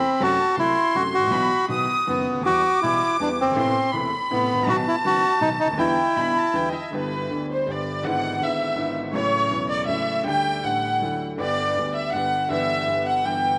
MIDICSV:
0, 0, Header, 1, 4, 480
1, 0, Start_track
1, 0, Key_signature, 1, "minor"
1, 0, Tempo, 372902
1, 264, Time_signature, 3, 2, 24, 8
1, 8906, Key_signature, 1, "major"
1, 17487, End_track
2, 0, Start_track
2, 0, Title_t, "Violin section"
2, 0, Program_c, 0, 48
2, 0, Note_on_c, 0, 83, 81
2, 258, Note_off_c, 0, 83, 0
2, 267, Note_on_c, 0, 81, 93
2, 722, Note_on_c, 0, 84, 93
2, 741, Note_off_c, 0, 81, 0
2, 1673, Note_on_c, 0, 83, 94
2, 1684, Note_off_c, 0, 84, 0
2, 2164, Note_off_c, 0, 83, 0
2, 2174, Note_on_c, 0, 87, 92
2, 2855, Note_off_c, 0, 87, 0
2, 3148, Note_on_c, 0, 86, 96
2, 4539, Note_off_c, 0, 86, 0
2, 4596, Note_on_c, 0, 84, 86
2, 5035, Note_off_c, 0, 84, 0
2, 5069, Note_on_c, 0, 83, 85
2, 5994, Note_on_c, 0, 81, 103
2, 6014, Note_off_c, 0, 83, 0
2, 7434, Note_off_c, 0, 81, 0
2, 7449, Note_on_c, 0, 79, 83
2, 7928, Note_off_c, 0, 79, 0
2, 7938, Note_on_c, 0, 83, 74
2, 8174, Note_off_c, 0, 83, 0
2, 8205, Note_on_c, 0, 81, 71
2, 8433, Note_off_c, 0, 81, 0
2, 8437, Note_on_c, 0, 79, 62
2, 8612, Note_off_c, 0, 79, 0
2, 8622, Note_on_c, 0, 75, 43
2, 8655, Note_on_c, 0, 76, 57
2, 8673, Note_off_c, 0, 75, 0
2, 8902, Note_off_c, 0, 76, 0
2, 8948, Note_on_c, 0, 71, 76
2, 9598, Note_off_c, 0, 71, 0
2, 9679, Note_on_c, 0, 72, 67
2, 9892, Note_off_c, 0, 72, 0
2, 9916, Note_on_c, 0, 74, 74
2, 10361, Note_on_c, 0, 78, 93
2, 10369, Note_off_c, 0, 74, 0
2, 10827, Note_off_c, 0, 78, 0
2, 10829, Note_on_c, 0, 76, 80
2, 11531, Note_off_c, 0, 76, 0
2, 11760, Note_on_c, 0, 73, 100
2, 12426, Note_off_c, 0, 73, 0
2, 12483, Note_on_c, 0, 74, 88
2, 12704, Note_off_c, 0, 74, 0
2, 12711, Note_on_c, 0, 76, 85
2, 13163, Note_off_c, 0, 76, 0
2, 13217, Note_on_c, 0, 79, 106
2, 13686, Note_on_c, 0, 78, 89
2, 13691, Note_off_c, 0, 79, 0
2, 14412, Note_off_c, 0, 78, 0
2, 14662, Note_on_c, 0, 74, 91
2, 15331, Note_off_c, 0, 74, 0
2, 15388, Note_on_c, 0, 76, 78
2, 15611, Note_on_c, 0, 78, 91
2, 15625, Note_off_c, 0, 76, 0
2, 16098, Note_off_c, 0, 78, 0
2, 16101, Note_on_c, 0, 76, 92
2, 16772, Note_off_c, 0, 76, 0
2, 16839, Note_on_c, 0, 78, 88
2, 17063, Note_on_c, 0, 79, 83
2, 17072, Note_off_c, 0, 78, 0
2, 17487, Note_off_c, 0, 79, 0
2, 17487, End_track
3, 0, Start_track
3, 0, Title_t, "Bandoneon"
3, 0, Program_c, 1, 23
3, 0, Note_on_c, 1, 60, 86
3, 291, Note_on_c, 1, 66, 99
3, 294, Note_off_c, 1, 60, 0
3, 720, Note_off_c, 1, 66, 0
3, 763, Note_on_c, 1, 64, 96
3, 1223, Note_on_c, 1, 66, 85
3, 1240, Note_off_c, 1, 64, 0
3, 1328, Note_off_c, 1, 66, 0
3, 1469, Note_on_c, 1, 66, 87
3, 2132, Note_off_c, 1, 66, 0
3, 2680, Note_on_c, 1, 59, 70
3, 3126, Note_off_c, 1, 59, 0
3, 3161, Note_on_c, 1, 66, 101
3, 3607, Note_off_c, 1, 66, 0
3, 3628, Note_on_c, 1, 64, 84
3, 4078, Note_off_c, 1, 64, 0
3, 4134, Note_on_c, 1, 62, 73
3, 4237, Note_off_c, 1, 62, 0
3, 4386, Note_on_c, 1, 60, 79
3, 5033, Note_off_c, 1, 60, 0
3, 5560, Note_on_c, 1, 59, 81
3, 6034, Note_on_c, 1, 66, 100
3, 6036, Note_off_c, 1, 59, 0
3, 6136, Note_off_c, 1, 66, 0
3, 6282, Note_on_c, 1, 64, 81
3, 6382, Note_off_c, 1, 64, 0
3, 6515, Note_on_c, 1, 66, 95
3, 6946, Note_off_c, 1, 66, 0
3, 6967, Note_on_c, 1, 63, 82
3, 7074, Note_off_c, 1, 63, 0
3, 7203, Note_on_c, 1, 63, 84
3, 7311, Note_off_c, 1, 63, 0
3, 7448, Note_on_c, 1, 64, 89
3, 8613, Note_off_c, 1, 64, 0
3, 17487, End_track
4, 0, Start_track
4, 0, Title_t, "Upright piano"
4, 0, Program_c, 2, 0
4, 258, Note_on_c, 2, 54, 82
4, 265, Note_on_c, 2, 42, 79
4, 265, Note_on_c, 2, 48, 62
4, 266, Note_on_c, 2, 57, 59
4, 269, Note_on_c, 2, 66, 69
4, 462, Note_off_c, 2, 54, 0
4, 464, Note_off_c, 2, 42, 0
4, 464, Note_off_c, 2, 48, 0
4, 464, Note_off_c, 2, 57, 0
4, 466, Note_off_c, 2, 66, 0
4, 733, Note_on_c, 2, 36, 55
4, 736, Note_on_c, 2, 48, 56
4, 741, Note_on_c, 2, 54, 42
4, 744, Note_on_c, 2, 57, 41
4, 745, Note_on_c, 2, 66, 54
4, 936, Note_off_c, 2, 36, 0
4, 940, Note_off_c, 2, 54, 0
4, 941, Note_off_c, 2, 48, 0
4, 942, Note_off_c, 2, 57, 0
4, 942, Note_off_c, 2, 66, 0
4, 1218, Note_on_c, 2, 48, 48
4, 1222, Note_on_c, 2, 54, 54
4, 1229, Note_on_c, 2, 42, 55
4, 1230, Note_on_c, 2, 66, 50
4, 1231, Note_on_c, 2, 57, 43
4, 1416, Note_off_c, 2, 48, 0
4, 1419, Note_off_c, 2, 54, 0
4, 1422, Note_off_c, 2, 42, 0
4, 1422, Note_off_c, 2, 66, 0
4, 1423, Note_off_c, 2, 57, 0
4, 1505, Note_on_c, 2, 32, 43
4, 1568, Note_on_c, 2, 33, 50
4, 1569, Note_off_c, 2, 32, 0
4, 1629, Note_on_c, 2, 34, 59
4, 1630, Note_off_c, 2, 33, 0
4, 1681, Note_on_c, 2, 52, 61
4, 1681, Note_on_c, 2, 54, 57
4, 1685, Note_on_c, 2, 47, 70
4, 1690, Note_on_c, 2, 66, 71
4, 1691, Note_off_c, 2, 34, 0
4, 1691, Note_on_c, 2, 59, 61
4, 1693, Note_on_c, 2, 35, 74
4, 1889, Note_off_c, 2, 52, 0
4, 1889, Note_off_c, 2, 54, 0
4, 1891, Note_off_c, 2, 47, 0
4, 1894, Note_off_c, 2, 59, 0
4, 1894, Note_off_c, 2, 66, 0
4, 1895, Note_off_c, 2, 35, 0
4, 2167, Note_on_c, 2, 51, 44
4, 2170, Note_on_c, 2, 47, 47
4, 2172, Note_on_c, 2, 59, 37
4, 2173, Note_on_c, 2, 54, 39
4, 2175, Note_on_c, 2, 35, 51
4, 2181, Note_on_c, 2, 66, 47
4, 2374, Note_off_c, 2, 51, 0
4, 2375, Note_off_c, 2, 47, 0
4, 2376, Note_off_c, 2, 54, 0
4, 2376, Note_off_c, 2, 59, 0
4, 2377, Note_off_c, 2, 35, 0
4, 2381, Note_off_c, 2, 66, 0
4, 2665, Note_on_c, 2, 51, 41
4, 2666, Note_on_c, 2, 54, 40
4, 2668, Note_on_c, 2, 42, 49
4, 2671, Note_on_c, 2, 30, 52
4, 2671, Note_on_c, 2, 59, 37
4, 2676, Note_on_c, 2, 66, 48
4, 2869, Note_off_c, 2, 51, 0
4, 2870, Note_off_c, 2, 42, 0
4, 2870, Note_off_c, 2, 54, 0
4, 2872, Note_off_c, 2, 30, 0
4, 2872, Note_off_c, 2, 59, 0
4, 2874, Note_off_c, 2, 66, 0
4, 2974, Note_on_c, 2, 37, 42
4, 3031, Note_off_c, 2, 37, 0
4, 3044, Note_on_c, 2, 38, 46
4, 3097, Note_off_c, 2, 38, 0
4, 3103, Note_on_c, 2, 39, 52
4, 3154, Note_on_c, 2, 52, 72
4, 3156, Note_off_c, 2, 39, 0
4, 3160, Note_on_c, 2, 40, 65
4, 3165, Note_on_c, 2, 55, 55
4, 3166, Note_on_c, 2, 59, 61
4, 3166, Note_on_c, 2, 67, 62
4, 3359, Note_off_c, 2, 40, 0
4, 3359, Note_off_c, 2, 52, 0
4, 3361, Note_off_c, 2, 55, 0
4, 3362, Note_off_c, 2, 59, 0
4, 3362, Note_off_c, 2, 67, 0
4, 3645, Note_on_c, 2, 35, 49
4, 3646, Note_on_c, 2, 55, 41
4, 3647, Note_on_c, 2, 67, 47
4, 3649, Note_on_c, 2, 59, 38
4, 3651, Note_on_c, 2, 47, 47
4, 3652, Note_on_c, 2, 52, 41
4, 3842, Note_off_c, 2, 35, 0
4, 3843, Note_off_c, 2, 55, 0
4, 3844, Note_off_c, 2, 59, 0
4, 3844, Note_off_c, 2, 67, 0
4, 3845, Note_off_c, 2, 47, 0
4, 3846, Note_off_c, 2, 52, 0
4, 4110, Note_on_c, 2, 55, 38
4, 4113, Note_on_c, 2, 40, 51
4, 4114, Note_on_c, 2, 52, 50
4, 4115, Note_on_c, 2, 59, 44
4, 4117, Note_on_c, 2, 67, 51
4, 4313, Note_off_c, 2, 55, 0
4, 4315, Note_off_c, 2, 40, 0
4, 4315, Note_off_c, 2, 59, 0
4, 4316, Note_off_c, 2, 52, 0
4, 4317, Note_off_c, 2, 67, 0
4, 4405, Note_on_c, 2, 30, 45
4, 4464, Note_on_c, 2, 31, 52
4, 4468, Note_off_c, 2, 30, 0
4, 4524, Note_on_c, 2, 32, 66
4, 4528, Note_off_c, 2, 31, 0
4, 4579, Note_on_c, 2, 57, 57
4, 4583, Note_on_c, 2, 33, 76
4, 4587, Note_off_c, 2, 32, 0
4, 4588, Note_on_c, 2, 59, 61
4, 4589, Note_on_c, 2, 48, 64
4, 4589, Note_on_c, 2, 64, 77
4, 4591, Note_on_c, 2, 45, 71
4, 4784, Note_off_c, 2, 57, 0
4, 4786, Note_off_c, 2, 33, 0
4, 4789, Note_off_c, 2, 48, 0
4, 4789, Note_off_c, 2, 59, 0
4, 4789, Note_off_c, 2, 64, 0
4, 4790, Note_off_c, 2, 45, 0
4, 5062, Note_on_c, 2, 57, 41
4, 5065, Note_on_c, 2, 28, 57
4, 5065, Note_on_c, 2, 40, 49
4, 5065, Note_on_c, 2, 48, 49
4, 5070, Note_on_c, 2, 59, 40
4, 5070, Note_on_c, 2, 64, 53
4, 5263, Note_off_c, 2, 57, 0
4, 5265, Note_off_c, 2, 28, 0
4, 5265, Note_off_c, 2, 40, 0
4, 5265, Note_off_c, 2, 48, 0
4, 5267, Note_off_c, 2, 59, 0
4, 5267, Note_off_c, 2, 64, 0
4, 5542, Note_on_c, 2, 48, 50
4, 5543, Note_on_c, 2, 59, 46
4, 5545, Note_on_c, 2, 45, 56
4, 5549, Note_on_c, 2, 33, 54
4, 5549, Note_on_c, 2, 57, 45
4, 5550, Note_on_c, 2, 64, 56
4, 5739, Note_off_c, 2, 48, 0
4, 5740, Note_off_c, 2, 59, 0
4, 5741, Note_off_c, 2, 45, 0
4, 5743, Note_off_c, 2, 33, 0
4, 5743, Note_off_c, 2, 57, 0
4, 5743, Note_off_c, 2, 64, 0
4, 5838, Note_on_c, 2, 32, 53
4, 5895, Note_off_c, 2, 32, 0
4, 5909, Note_on_c, 2, 33, 50
4, 5950, Note_on_c, 2, 34, 60
4, 5961, Note_off_c, 2, 33, 0
4, 6008, Note_on_c, 2, 35, 78
4, 6008, Note_on_c, 2, 47, 83
4, 6009, Note_on_c, 2, 51, 64
4, 6009, Note_on_c, 2, 54, 62
4, 6011, Note_off_c, 2, 34, 0
4, 6015, Note_on_c, 2, 59, 62
4, 6017, Note_on_c, 2, 66, 72
4, 6210, Note_off_c, 2, 35, 0
4, 6210, Note_off_c, 2, 47, 0
4, 6210, Note_off_c, 2, 51, 0
4, 6210, Note_off_c, 2, 54, 0
4, 6213, Note_off_c, 2, 59, 0
4, 6214, Note_off_c, 2, 66, 0
4, 6491, Note_on_c, 2, 54, 44
4, 6495, Note_on_c, 2, 30, 53
4, 6496, Note_on_c, 2, 42, 53
4, 6498, Note_on_c, 2, 51, 46
4, 6501, Note_on_c, 2, 66, 50
4, 6503, Note_on_c, 2, 59, 44
4, 6690, Note_off_c, 2, 54, 0
4, 6692, Note_off_c, 2, 30, 0
4, 6693, Note_off_c, 2, 42, 0
4, 6694, Note_off_c, 2, 51, 0
4, 6695, Note_off_c, 2, 66, 0
4, 6696, Note_off_c, 2, 59, 0
4, 6958, Note_on_c, 2, 54, 43
4, 6961, Note_on_c, 2, 59, 43
4, 6963, Note_on_c, 2, 35, 56
4, 6963, Note_on_c, 2, 66, 49
4, 6965, Note_on_c, 2, 51, 46
4, 6968, Note_on_c, 2, 47, 51
4, 7162, Note_off_c, 2, 54, 0
4, 7163, Note_off_c, 2, 59, 0
4, 7164, Note_off_c, 2, 35, 0
4, 7164, Note_off_c, 2, 66, 0
4, 7165, Note_off_c, 2, 51, 0
4, 7167, Note_off_c, 2, 47, 0
4, 7260, Note_on_c, 2, 37, 45
4, 7321, Note_off_c, 2, 37, 0
4, 7321, Note_on_c, 2, 38, 53
4, 7369, Note_on_c, 2, 39, 60
4, 7382, Note_off_c, 2, 38, 0
4, 7436, Note_off_c, 2, 39, 0
4, 7436, Note_on_c, 2, 50, 66
4, 7437, Note_on_c, 2, 55, 60
4, 7438, Note_on_c, 2, 40, 71
4, 7441, Note_on_c, 2, 52, 69
4, 7444, Note_on_c, 2, 59, 58
4, 7448, Note_on_c, 2, 64, 67
4, 7642, Note_off_c, 2, 50, 0
4, 7642, Note_off_c, 2, 55, 0
4, 7643, Note_off_c, 2, 40, 0
4, 7645, Note_off_c, 2, 52, 0
4, 7646, Note_off_c, 2, 59, 0
4, 7648, Note_off_c, 2, 64, 0
4, 7930, Note_on_c, 2, 50, 39
4, 7931, Note_on_c, 2, 55, 41
4, 7931, Note_on_c, 2, 59, 39
4, 7933, Note_on_c, 2, 35, 50
4, 7933, Note_on_c, 2, 64, 49
4, 7935, Note_on_c, 2, 47, 52
4, 8131, Note_off_c, 2, 50, 0
4, 8132, Note_off_c, 2, 55, 0
4, 8132, Note_off_c, 2, 59, 0
4, 8132, Note_off_c, 2, 64, 0
4, 8133, Note_off_c, 2, 35, 0
4, 8134, Note_off_c, 2, 47, 0
4, 8407, Note_on_c, 2, 50, 42
4, 8412, Note_on_c, 2, 40, 52
4, 8416, Note_on_c, 2, 52, 54
4, 8416, Note_on_c, 2, 55, 40
4, 8416, Note_on_c, 2, 59, 39
4, 8418, Note_on_c, 2, 64, 48
4, 8619, Note_off_c, 2, 50, 0
4, 8621, Note_off_c, 2, 40, 0
4, 8623, Note_off_c, 2, 52, 0
4, 8623, Note_off_c, 2, 55, 0
4, 8624, Note_off_c, 2, 59, 0
4, 8625, Note_off_c, 2, 64, 0
4, 8885, Note_on_c, 2, 50, 49
4, 8903, Note_on_c, 2, 55, 42
4, 8912, Note_on_c, 2, 31, 57
4, 8912, Note_on_c, 2, 43, 50
4, 8920, Note_on_c, 2, 59, 45
4, 8937, Note_on_c, 2, 67, 49
4, 9351, Note_off_c, 2, 50, 0
4, 9361, Note_off_c, 2, 55, 0
4, 9366, Note_off_c, 2, 31, 0
4, 9366, Note_off_c, 2, 43, 0
4, 9370, Note_off_c, 2, 59, 0
4, 9371, Note_on_c, 2, 50, 34
4, 9379, Note_off_c, 2, 67, 0
4, 9382, Note_on_c, 2, 55, 30
4, 9390, Note_off_c, 2, 50, 0
4, 9392, Note_on_c, 2, 38, 42
4, 9397, Note_on_c, 2, 50, 40
4, 9401, Note_on_c, 2, 59, 29
4, 9423, Note_on_c, 2, 67, 37
4, 9831, Note_off_c, 2, 50, 0
4, 9839, Note_off_c, 2, 55, 0
4, 9844, Note_off_c, 2, 38, 0
4, 9848, Note_off_c, 2, 59, 0
4, 9850, Note_on_c, 2, 50, 35
4, 9859, Note_off_c, 2, 67, 0
4, 9862, Note_on_c, 2, 55, 33
4, 9871, Note_on_c, 2, 43, 43
4, 9875, Note_on_c, 2, 31, 42
4, 9884, Note_on_c, 2, 59, 33
4, 9900, Note_on_c, 2, 67, 42
4, 10312, Note_off_c, 2, 50, 0
4, 10318, Note_off_c, 2, 55, 0
4, 10323, Note_off_c, 2, 43, 0
4, 10325, Note_off_c, 2, 31, 0
4, 10325, Note_on_c, 2, 44, 51
4, 10329, Note_off_c, 2, 59, 0
4, 10337, Note_off_c, 2, 67, 0
4, 10339, Note_on_c, 2, 50, 44
4, 10345, Note_off_c, 2, 44, 0
4, 10348, Note_on_c, 2, 56, 47
4, 10354, Note_on_c, 2, 32, 58
4, 10354, Note_on_c, 2, 44, 61
4, 10370, Note_on_c, 2, 59, 46
4, 10379, Note_on_c, 2, 64, 54
4, 10776, Note_off_c, 2, 44, 0
4, 10785, Note_off_c, 2, 50, 0
4, 10795, Note_on_c, 2, 44, 41
4, 10797, Note_off_c, 2, 56, 0
4, 10798, Note_off_c, 2, 32, 0
4, 10805, Note_on_c, 2, 50, 33
4, 10808, Note_off_c, 2, 59, 0
4, 10813, Note_off_c, 2, 64, 0
4, 10818, Note_on_c, 2, 32, 37
4, 10819, Note_on_c, 2, 56, 33
4, 10834, Note_on_c, 2, 59, 35
4, 10846, Note_on_c, 2, 64, 38
4, 11235, Note_off_c, 2, 44, 0
4, 11250, Note_off_c, 2, 50, 0
4, 11255, Note_on_c, 2, 44, 37
4, 11264, Note_off_c, 2, 32, 0
4, 11266, Note_off_c, 2, 56, 0
4, 11269, Note_on_c, 2, 50, 32
4, 11274, Note_off_c, 2, 44, 0
4, 11274, Note_off_c, 2, 59, 0
4, 11280, Note_off_c, 2, 64, 0
4, 11283, Note_on_c, 2, 32, 46
4, 11283, Note_on_c, 2, 44, 44
4, 11287, Note_on_c, 2, 56, 34
4, 11295, Note_on_c, 2, 59, 33
4, 11307, Note_on_c, 2, 64, 38
4, 11728, Note_off_c, 2, 50, 0
4, 11728, Note_on_c, 2, 49, 54
4, 11735, Note_off_c, 2, 32, 0
4, 11735, Note_off_c, 2, 44, 0
4, 11737, Note_off_c, 2, 56, 0
4, 11741, Note_off_c, 2, 59, 0
4, 11747, Note_off_c, 2, 64, 0
4, 11748, Note_on_c, 2, 54, 46
4, 11759, Note_on_c, 2, 45, 61
4, 11760, Note_on_c, 2, 33, 64
4, 11763, Note_on_c, 2, 57, 49
4, 11783, Note_on_c, 2, 64, 57
4, 12197, Note_off_c, 2, 49, 0
4, 12207, Note_off_c, 2, 54, 0
4, 12212, Note_off_c, 2, 45, 0
4, 12213, Note_off_c, 2, 33, 0
4, 12214, Note_off_c, 2, 57, 0
4, 12220, Note_on_c, 2, 49, 36
4, 12225, Note_off_c, 2, 64, 0
4, 12232, Note_on_c, 2, 54, 34
4, 12240, Note_on_c, 2, 40, 45
4, 12242, Note_on_c, 2, 28, 46
4, 12254, Note_on_c, 2, 57, 31
4, 12271, Note_on_c, 2, 64, 40
4, 12680, Note_off_c, 2, 49, 0
4, 12691, Note_off_c, 2, 54, 0
4, 12694, Note_off_c, 2, 40, 0
4, 12695, Note_off_c, 2, 28, 0
4, 12700, Note_on_c, 2, 49, 38
4, 12701, Note_off_c, 2, 57, 0
4, 12710, Note_off_c, 2, 64, 0
4, 12713, Note_on_c, 2, 54, 36
4, 12721, Note_on_c, 2, 45, 48
4, 12730, Note_on_c, 2, 33, 47
4, 12734, Note_on_c, 2, 57, 36
4, 12749, Note_on_c, 2, 64, 45
4, 13167, Note_off_c, 2, 49, 0
4, 13173, Note_off_c, 2, 54, 0
4, 13174, Note_on_c, 2, 50, 65
4, 13177, Note_off_c, 2, 45, 0
4, 13182, Note_off_c, 2, 33, 0
4, 13183, Note_off_c, 2, 57, 0
4, 13183, Note_on_c, 2, 55, 47
4, 13191, Note_off_c, 2, 64, 0
4, 13198, Note_on_c, 2, 38, 57
4, 13202, Note_on_c, 2, 57, 45
4, 13221, Note_on_c, 2, 67, 63
4, 13645, Note_off_c, 2, 50, 0
4, 13650, Note_off_c, 2, 55, 0
4, 13658, Note_off_c, 2, 38, 0
4, 13660, Note_off_c, 2, 57, 0
4, 13664, Note_on_c, 2, 50, 33
4, 13669, Note_off_c, 2, 67, 0
4, 13686, Note_on_c, 2, 55, 33
4, 13691, Note_on_c, 2, 45, 39
4, 13695, Note_on_c, 2, 33, 43
4, 13705, Note_on_c, 2, 57, 33
4, 13719, Note_on_c, 2, 67, 38
4, 14132, Note_off_c, 2, 50, 0
4, 14145, Note_off_c, 2, 55, 0
4, 14147, Note_off_c, 2, 45, 0
4, 14149, Note_off_c, 2, 33, 0
4, 14151, Note_on_c, 2, 50, 37
4, 14154, Note_off_c, 2, 57, 0
4, 14161, Note_off_c, 2, 67, 0
4, 14170, Note_off_c, 2, 50, 0
4, 14173, Note_on_c, 2, 54, 33
4, 14177, Note_on_c, 2, 38, 42
4, 14180, Note_on_c, 2, 50, 45
4, 14189, Note_on_c, 2, 57, 31
4, 14206, Note_on_c, 2, 64, 39
4, 14600, Note_off_c, 2, 50, 0
4, 14619, Note_on_c, 2, 50, 51
4, 14631, Note_off_c, 2, 54, 0
4, 14633, Note_off_c, 2, 38, 0
4, 14639, Note_off_c, 2, 57, 0
4, 14640, Note_on_c, 2, 55, 47
4, 14646, Note_on_c, 2, 43, 62
4, 14648, Note_off_c, 2, 64, 0
4, 14648, Note_on_c, 2, 31, 62
4, 14656, Note_on_c, 2, 59, 45
4, 14680, Note_on_c, 2, 67, 58
4, 15091, Note_off_c, 2, 50, 0
4, 15105, Note_off_c, 2, 55, 0
4, 15108, Note_off_c, 2, 43, 0
4, 15109, Note_off_c, 2, 31, 0
4, 15110, Note_on_c, 2, 50, 34
4, 15113, Note_off_c, 2, 59, 0
4, 15124, Note_on_c, 2, 55, 34
4, 15125, Note_off_c, 2, 67, 0
4, 15130, Note_off_c, 2, 50, 0
4, 15136, Note_on_c, 2, 38, 44
4, 15139, Note_on_c, 2, 50, 42
4, 15146, Note_on_c, 2, 59, 31
4, 15156, Note_on_c, 2, 67, 38
4, 15577, Note_off_c, 2, 50, 0
4, 15590, Note_off_c, 2, 55, 0
4, 15595, Note_off_c, 2, 38, 0
4, 15596, Note_on_c, 2, 50, 37
4, 15600, Note_off_c, 2, 59, 0
4, 15605, Note_off_c, 2, 67, 0
4, 15615, Note_on_c, 2, 31, 47
4, 15616, Note_on_c, 2, 55, 36
4, 15619, Note_on_c, 2, 43, 47
4, 15633, Note_on_c, 2, 59, 34
4, 15645, Note_on_c, 2, 67, 44
4, 16053, Note_off_c, 2, 43, 0
4, 16066, Note_off_c, 2, 50, 0
4, 16072, Note_on_c, 2, 43, 68
4, 16073, Note_off_c, 2, 55, 0
4, 16074, Note_off_c, 2, 31, 0
4, 16085, Note_off_c, 2, 59, 0
4, 16088, Note_on_c, 2, 52, 49
4, 16091, Note_off_c, 2, 67, 0
4, 16092, Note_on_c, 2, 55, 51
4, 16093, Note_on_c, 2, 31, 58
4, 16107, Note_on_c, 2, 59, 51
4, 16124, Note_on_c, 2, 67, 59
4, 16523, Note_off_c, 2, 43, 0
4, 16530, Note_off_c, 2, 52, 0
4, 16542, Note_on_c, 2, 43, 41
4, 16544, Note_off_c, 2, 31, 0
4, 16544, Note_off_c, 2, 55, 0
4, 16549, Note_on_c, 2, 52, 36
4, 16559, Note_off_c, 2, 59, 0
4, 16563, Note_on_c, 2, 31, 41
4, 16563, Note_on_c, 2, 55, 36
4, 16570, Note_off_c, 2, 67, 0
4, 16579, Note_on_c, 2, 59, 34
4, 16592, Note_on_c, 2, 67, 39
4, 17007, Note_off_c, 2, 43, 0
4, 17020, Note_off_c, 2, 52, 0
4, 17027, Note_on_c, 2, 43, 49
4, 17030, Note_off_c, 2, 31, 0
4, 17030, Note_off_c, 2, 55, 0
4, 17038, Note_off_c, 2, 59, 0
4, 17039, Note_on_c, 2, 52, 40
4, 17044, Note_off_c, 2, 67, 0
4, 17050, Note_on_c, 2, 55, 34
4, 17055, Note_on_c, 2, 31, 49
4, 17075, Note_on_c, 2, 59, 35
4, 17078, Note_on_c, 2, 67, 44
4, 17487, Note_off_c, 2, 31, 0
4, 17487, Note_off_c, 2, 43, 0
4, 17487, Note_off_c, 2, 52, 0
4, 17487, Note_off_c, 2, 55, 0
4, 17487, Note_off_c, 2, 59, 0
4, 17487, Note_off_c, 2, 67, 0
4, 17487, End_track
0, 0, End_of_file